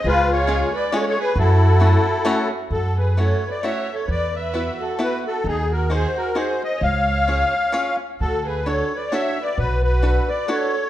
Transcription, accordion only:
0.06 0.69 F4 medium
0.06 0.30 B4 loud
0.32 0.75 C#5 medium
0.75 0.94 D5 medium
0.95 0.99 C#5 medium
1.01 1.05 C#5 medium
1.09 1.19 C#5 medium
1.20 1.38 B4 medium
1.39 2.48 E4 medium
1.39 2.48 A4 medium
2.72 2.98 A4 medium
2.98 3.18 B4 soft
3.19 3.50 C#5 medium
3.51 3.65 D5 medium
3.64 3.95 E5 medium
3.94 4.10 C#5 medium
4.11 4.35 D5 medium
4.35 4.81 E5 medium
4.81 5.01 A4 medium
5.02 5.24 B4 medium
5.27 5.47 A4 medium
5.48 5.72 G#4 medium
5.72 5.92 A#4 medium
5.93 6.18 C5 medium
6.17 6.37 A#4 medium
6.38 6.63 C5 medium
6.64 6.84 D#5 medium
6.83 7.96 F5 medium
8.21 8.47 A4 medium
8.46 8.67 B4 medium
8.66 8.98 C#5 medium
8.97 9.13 D5 medium
9.12 9.44 E5 medium
9.42 9.58 D5 medium
9.58 9.82 B4 medium
9.83 10.30 B4 medium
10.28 10.49 D5 medium
10.49 10.90 C#5 medium

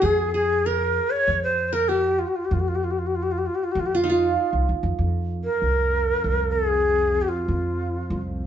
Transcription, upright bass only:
0.03 0.98 F2 medium
1.28 2.23 F2 medium
2.51 3.46 F2 loud
3.75 4.35 F2 medium
4.53 4.67 C2 medium
4.69 4.82 D#2 medium
4.83 4.98 F2 medium
4.99 5.47 F2 medium
5.62 6.09 C2 medium
6.24 7.19 C2 medium
7.48 7.96 F2 medium
8.10 8.46 C2 medium

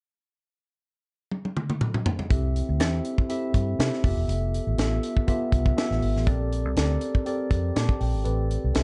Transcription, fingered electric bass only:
2.31 2.60 C2 medium
2.69 2.80 D2 medium
2.80 2.99 E2 medium
3.54 3.73 G2 medium
3.79 3.89 C3 loud
4.04 4.14 F1 medium
4.17 4.26 E1 medium
4.28 4.58 F1 medium
4.67 4.76 A1 medium
4.78 4.97 A1 medium
5.52 5.72 C2 loud
5.91 6.00 A1 medium
6.02 6.13 G#1 medium
6.16 6.27 A1 medium
6.27 6.65 A#1 medium
6.65 6.74 C2 medium
6.77 6.96 D2 medium
7.51 7.70 F2 medium
7.76 7.86 A#2 loud
8.01 8.15 A#1 medium
8.15 8.23 G#1 medium
8.26 8.55 A1 medium
8.64 8.73 C2 medium
8.75 8.83 C2 medium

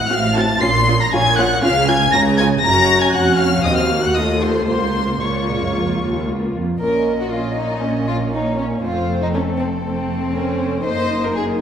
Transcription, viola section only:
0.10 0.18 C4 medium
0.10 0.18 F#4 medium
0.35 0.44 C4 medium
0.35 0.43 F#4 medium
0.60 0.68 C#4 medium
0.60 0.68 F4 medium
0.87 0.95 C#4 medium
0.87 0.96 F4 medium
1.12 1.21 C#4 medium
1.12 1.20 F4 medium
1.38 1.46 C#4 medium
1.38 1.46 F4 medium
1.62 1.70 C#4 medium
1.62 1.70 F4 medium
1.88 1.96 C#4 medium
1.88 1.96 F4 medium
2.13 2.21 C#4 medium
2.13 2.22 F4 medium
2.40 2.48 C#4 medium
2.40 2.48 F4 medium
2.64 3.11 C#4 medium
2.64 3.11 F#4 medium
3.14 3.63 C#4 medium
3.14 3.63 F#4 medium
3.64 3.89 C4 medium
3.64 4.14 F#4 medium
3.89 4.14 A#3 medium
4.15 4.67 A3 medium
4.15 4.65 F4 medium
4.67 5.19 A#3 medium
4.67 5.19 F4 medium
5.20 6.56 A#3 medium
5.20 6.57 F4 medium
6.80 7.28 A#3 soft
6.80 7.28 C#4 medium
7.31 7.80 A#3 medium
7.31 7.80 C#4 medium
7.81 8.82 A#3 medium
7.81 8.82 C#4 medium
8.83 9.83 A3 medium
8.83 9.83 C4 medium
9.84 10.83 A3 medium
9.84 10.34 C4 medium
10.35 10.85 C#4 medium
10.84 11.61 A#3 medium
10.84 11.61 D#4 medium

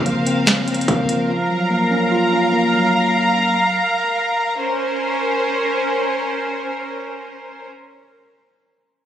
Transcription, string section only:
0.00 4.54 A#4 medium
0.00 1.26 C5 medium
0.00 1.26 F5 medium
1.29 4.55 F5 medium
1.29 4.55 A#5 medium
4.58 7.67 C#4 medium
4.58 7.67 A#4 medium
4.58 7.67 C5 medium

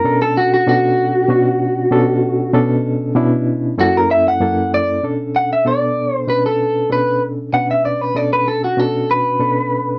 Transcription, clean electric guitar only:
0.00 0.20 A#4 loud
0.22 0.36 A4 medium
0.37 0.53 F#4 loud
0.54 0.67 F#4 medium
0.69 2.51 F#4 loud
3.81 3.96 F#4 loud
3.97 4.10 A#4 medium
4.11 4.26 E5 loud
4.28 4.72 F#5 loud
4.74 5.03 D5 loud
5.36 5.51 F#5 medium
5.53 5.66 E5 medium
5.67 6.15 D5 medium
6.15 6.27 C5 medium
6.30 6.45 B4 medium
6.46 6.90 A4 medium
6.92 7.22 B4 medium
7.54 7.69 F#5 medium
7.71 7.84 E5 medium
7.85 8.01 D5 medium
8.01 8.16 B4 medium
8.16 8.32 D5 medium
8.33 8.47 B4 medium
8.48 8.63 A4 medium
8.64 8.79 F#4 medium
8.79 9.09 A4 medium
9.11 9.99 B4 medium

